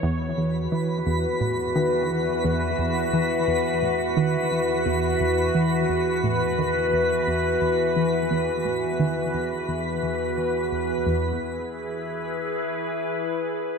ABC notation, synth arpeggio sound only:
X:1
M:4/4
L:1/8
Q:1/4=87
K:E
V:1 name="Synth arpeggio sound" clef=bass
E,, E,, E, E,, A,, D, E,, E,, | E,, E, E,, A,, D, E,, E,, E,, | E, E,, A,, D, E,, E,, E,, E, | E,, A,, D, E,, E,, E,, E, E,, |
E,, z6 z |]